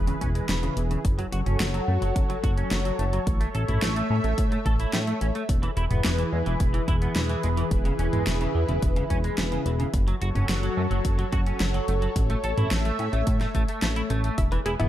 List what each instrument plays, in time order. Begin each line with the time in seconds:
Already playing: analog synth bass E1, analog synth pad E3 E4 G#4 B4
0.07 clean electric guitar C#3, closed hi-hat
0.21 analog synth bass E1, clean electric guitar C#4, kick, closed hi-hat
0.35 clean electric guitar G#3, closed hi-hat
0.49 analog synth bass E1, clean electric guitar C#3, snare, closed hi-hat
0.63 clean electric guitar C#3, closed hi-hat
0.77 analog synth bass E1, clean electric guitar E3, closed hi-hat
0.91 clean electric guitar C#3, closed hi-hat
1.04 analog synth bass F#1, analog synth pad F#3 F#4 A4 C#5, kick, closed hi-hat
1.19 clean electric guitar F#3, closed hi-hat
1.32 analog synth bass F#1, clean electric guitar F#4, closed hi-hat
1.46 analog synth bass F#1, clean electric guitar C#4, closed hi-hat, mid tom
1.60 analog synth bass F#1, clean electric guitar F#3, snare, closed hi-hat
1.74 clean electric guitar F#3, closed hi-hat
1.88 analog synth bass F#2, clean electric guitar A3
2.02 analog synth bass F#1, clean electric guitar F#3, closed hi-hat
2.16 analog synth bass F#1, kick, closed hi-hat
2.30 clean electric guitar F#3, closed hi-hat
2.43 analog synth bass F#1, clean electric guitar F#4, kick, closed hi-hat
2.57 clean electric guitar C#4, closed hi-hat
2.71 analog synth bass F#1, clean electric guitar F#3, snare, closed hi-hat
2.85 clean electric guitar F#3, closed hi-hat
2.99 analog synth bass F#1, clean electric guitar A3, closed hi-hat
3.13 clean electric guitar F#3, closed hi-hat
3.27 analog synth bass A1, analog synth pad A3 E5, kick, closed hi-hat
3.41 clean electric guitar A3, closed hi-hat
3.55 analog synth bass A1, clean electric guitar A4, closed hi-hat
3.68 analog synth bass A1, clean electric guitar E4, closed hi-hat, mid tom
3.82 analog synth bass A1, clean electric guitar A3, snare, closed hi-hat
3.96 clean electric guitar A3, closed hi-hat
4.10 analog synth bass A2, clean electric guitar C#4
4.24 analog synth bass A1, clean electric guitar A3, closed hi-hat
4.38 analog synth bass A2, kick, closed hi-hat
4.52 clean electric guitar A3, closed hi-hat
4.66 analog synth bass A1, clean electric guitar A4, kick, closed hi-hat
4.80 clean electric guitar E4, closed hi-hat
4.93 analog synth bass A2, clean electric guitar A3, snare, closed hi-hat
5.07 clean electric guitar A3, closed hi-hat
5.21 analog synth bass A1, clean electric guitar C#4, closed hi-hat
5.35 clean electric guitar A3, closed hi-hat
5.49 analog synth bass E1, analog synth pad E3 E4 G#4 B4, kick, closed hi-hat
5.63 clean electric guitar E3, closed hi-hat
5.77 analog synth bass E1, clean electric guitar E4, closed hi-hat
5.91 analog synth bass E1, clean electric guitar B3, closed hi-hat, mid tom
6.04 analog synth bass E1, clean electric guitar E3, snare, closed hi-hat
6.18 clean electric guitar E3, closed hi-hat
6.32 analog synth bass E2, clean electric guitar G#3
6.46 analog synth bass E1, clean electric guitar E3, closed hi-hat
6.60 analog synth bass E1, kick, closed hi-hat
6.74 clean electric guitar E3, closed hi-hat
6.88 analog synth bass E1, clean electric guitar E4, kick, closed hi-hat
7.02 clean electric guitar B3, closed hi-hat
7.16 analog synth bass E1, clean electric guitar E3, snare, closed hi-hat
7.29 clean electric guitar E3, closed hi-hat
7.43 analog synth bass E1, clean electric guitar G#3, closed hi-hat
7.57 clean electric guitar E3, closed hi-hat
7.71 analog synth bass E1, analog synth pad E4, kick, closed hi-hat
7.85 clean electric guitar C#3, closed hi-hat
7.99 analog synth bass E1, clean electric guitar C#4, closed hi-hat
8.13 analog synth bass E1, clean electric guitar G#3, closed hi-hat, mid tom
8.27 analog synth bass E1, clean electric guitar C#3, snare, closed hi-hat
8.41 clean electric guitar C#3, closed hi-hat
8.55 analog synth bass E2, clean electric guitar E3
8.68 analog synth bass E1, clean electric guitar C#3, closed hi-hat
8.82 analog synth bass E1, kick, closed hi-hat
8.96 clean electric guitar C#3, closed hi-hat
9.10 analog synth bass E1, clean electric guitar C#4, kick, closed hi-hat
9.24 clean electric guitar G#3, closed hi-hat
9.38 analog synth bass E1, clean electric guitar C#3, snare, closed hi-hat
9.52 clean electric guitar C#3, closed hi-hat
9.66 analog synth bass E1, clean electric guitar E3, closed hi-hat
9.80 clean electric guitar C#3, closed hi-hat
9.93 analog synth bass F#1, analog synth pad F#3 F#4 A4 C#5, kick, closed hi-hat
10.08 clean electric guitar F#3, closed hi-hat
10.21 analog synth bass F#1, clean electric guitar F#4, closed hi-hat
10.35 analog synth bass F#1, clean electric guitar C#4, closed hi-hat, mid tom
10.49 analog synth bass F#1, clean electric guitar F#3, snare, closed hi-hat
10.63 clean electric guitar F#3, closed hi-hat
10.77 analog synth bass F#2, clean electric guitar A3
10.91 analog synth bass F#1, clean electric guitar F#3, closed hi-hat
11.05 analog synth bass F#1, kick, closed hi-hat
11.19 clean electric guitar F#3, closed hi-hat
11.32 analog synth bass F#1, clean electric guitar F#4, kick, closed hi-hat
11.46 clean electric guitar C#4, closed hi-hat
11.60 analog synth bass F#1, clean electric guitar F#3, snare, closed hi-hat
11.74 clean electric guitar F#3, closed hi-hat
11.88 analog synth bass F#1, clean electric guitar A3, closed hi-hat
12.02 clean electric guitar F#3, closed hi-hat
12.16 analog synth bass A1, analog synth pad A3 E5, kick, closed hi-hat
12.30 clean electric guitar A3, closed hi-hat
12.44 analog synth bass A1, clean electric guitar A4, closed hi-hat
12.57 analog synth bass A1, clean electric guitar E4, closed hi-hat, mid tom
12.71 analog synth bass A1, clean electric guitar A3, snare, closed hi-hat
12.85 clean electric guitar A3, closed hi-hat
12.99 analog synth bass A2, clean electric guitar C#4, closed hi-hat
13.13 analog synth bass A1, clean electric guitar A3, closed hi-hat
13.27 analog synth bass A2, kick, closed hi-hat
13.41 clean electric guitar A3, snare, closed hi-hat
13.55 analog synth bass A1, clean electric guitar A3, kick, closed hi-hat
13.68 clean electric guitar A3, closed hi-hat
13.82 analog synth bass A1, clean electric guitar A3, snare, closed hi-hat
13.96 clean electric guitar E4, closed hi-hat
14.10 analog synth bass A1, clean electric guitar A3, closed hi-hat
14.24 clean electric guitar A3, closed hi-hat
14.38 analog synth bass E1, analog synth pad E3 E4 G#4 B4, synth arpeggio sound E5, kick, closed hi-hat
14.52 clean electric guitar E3, synth arpeggio sound B4, closed hi-hat
14.66 analog synth bass E1, clean electric guitar E4, synth arpeggio sound G#4, closed hi-hat
14.80 analog synth bass E1, clean electric guitar B3, synth arpeggio sound E4, closed hi-hat, mid tom